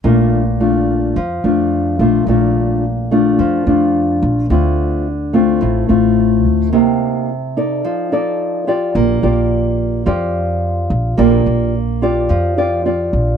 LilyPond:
<<
  \new Staff \with { instrumentName = "Nylon-string guitar" } { \time 4/4 \key bes \major \tempo 4 = 108 << { <a d' f'>8 r8 <a d' f'>4 r8 <a d' f'>4 <a d' f'>8 | <a d' f'>4 r8 <a d' f'>4 <a d' f'>4. | <a c' f'>4 r8 <a c' f'>4 <a c' f'>4. | <bes ees' g'>4 r8 <ees' a' d''>4 <ees' a' d''>4 <f' g' d''>8~ |
<f' g' d''>8 <f' g' d''>4. <f' g' d''>2 | <f' g' d''>4 r8 <f' g' d''>4 <f' g' d''>8 <f' g' d''>4 | } \\ { bes,2 f2 | bes,2 f2 | d2 a,2 | c2 f2 |
bes2 f2 | bes2 f2 | } >> }
  \new Staff \with { instrumentName = "Upright bass" } { \clef bass \time 4/4 \key bes \major bes,,2 f,8 f,4 bes,,8 | bes,,2 f,8 f,4 bes,,8 | d,2 a,,8 a,,4 d,8 | r1 |
bes,,8 bes,,4. f,4. bes,,8 | bes,,8 bes,,4. f,4. bes,,8 | }
>>